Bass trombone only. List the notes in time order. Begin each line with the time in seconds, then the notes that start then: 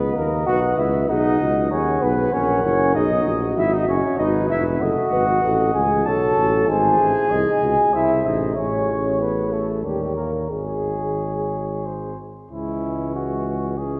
Already playing: C#2
0.17 D#2
0.48 B1
0.78 C#2
1.09 B1
1.40 C#2
1.71 D#2
2.02 B1
2.33 A#1
2.64 F#1
2.95 B1
3.26 A#1
3.57 G#1
3.88 F#1
4.19 G#1
4.50 F1
4.81 F#1
5.12 G#1
5.44 A1
5.75 C#2
6.06 B1
6.37 A1
6.68 G#1
7.00 A1
7.31 C2
7.62 C#2
7.94 C2
8.26 A1
8.57 A1
9.84 D#2
10.51 G#1
12.52 C#2